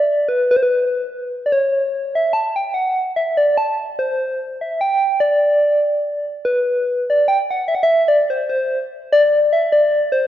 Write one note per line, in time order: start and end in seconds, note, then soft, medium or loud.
0.00 0.30 D5 medium
0.28 0.50 B4 medium
0.51 0.58 B4 medium
0.56 0.64 C5 medium
0.62 1.33 B4 medium
1.46 1.54 D5 medium
1.52 2.14 C#5 loud
2.15 2.34 E5 medium
2.33 2.57 A5 medium
2.56 2.73 G5 medium
2.74 3.13 F#5 medium
3.17 3.39 E5 medium
3.38 3.59 D5 medium
3.58 3.89 A5 medium
3.99 4.57 C5 medium
4.61 4.82 E5 medium
4.81 5.22 G5 loud
5.20 6.25 D5 loud
6.45 7.05 B4 loud
7.10 7.26 D5 medium
7.28 7.38 G5 medium
7.50 7.70 F#5 medium
7.68 7.76 E5 medium
7.75 7.85 F#5 medium
7.83 8.10 E5 loud
8.08 8.32 D5 loud
8.30 8.49 C5 medium
8.50 8.79 C5 medium
9.12 9.50 D5 loud
9.53 9.70 E5 medium
9.73 10.10 D5 loud
10.12 10.27 C5 loud